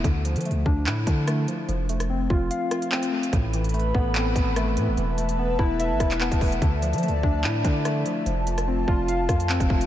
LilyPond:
<<
  \new Staff \with { instrumentName = "Analog synth pad" } { \time 4/4 \key d \dorian \tempo 4 = 146 << { r1 | r1 | <b' b''>1 | <b' a''>1 |
<d'' a''>1 | a''1 | } \\ { r1 | r1 | a'1 | e''1~ |
e''1 | f'1 | } >> }
  \new Staff \with { instrumentName = "Synth keys" } { \time 4/4 \key d \dorian d8 f8 a8 d'8 e'8 d'8 a8 f8 | f8 a8 c'8 f'8 f''8 f'8 c'8 a8 | a,8 e8 a8 b8 c'8 b8 a8 e8 | e8 a8 b8 e'8 e''8 e'8 b8 a8 |
d8 f8 a8 d'8 e'8 d'8 a8 f8 | f8 a8 c'8 f'8 f''8 f'8 c'8 a8 | }
  \new Staff \with { instrumentName = "808-style bass" } { \clef bass \time 4/4 \key d \dorian d,8. f16. d,16. d,8 a,8 d4 r8 | f,,4. f,,8 r2 | a,,4. a,,4 gis,,4 a,16 gis,,16 | e,,4. e,,8. gis,,16 e,,8. e,,16 e,,8 |
d,8. f16. d,16. d,8 a,8 d4 r8 | f,,4. f,,4 f,8. f,,16 f,,8 | }
  \new DrumStaff \with { instrumentName = "Drums" } \drummode { \time 4/4 <hh bd>8 hh16 hh32 hh32 hh32 hh16. bd8 hc8 <hh bd>8 <hh ss>8 hh8 | hh8 hh16 <hh ss>16 r8 bd8 hh8 <hh ss>16 hh16 hc16 hh8 hh16 | <hh bd>8 hh16 hh32 hh32 hh32 hh16. bd8 hc8 <hh bd>8 <hh ss>8 hh8 | hh8 hh16 hh16 r8 bd8 hh8 <hh bd ss>16 <hc hh>16 hc16 <hh bd>16 <hho bd>16 hh16 |
<hh bd>8 hh16 hh32 hh32 hh32 hh16. bd8 hc8 <hh bd>8 <hh ss>8 hh8 | hh8 hh16 <hh ss>16 r8 bd8 hh8 <hh bd ss>16 hh16 hc16 <hh bd>16 bd16 hh16 | }
>>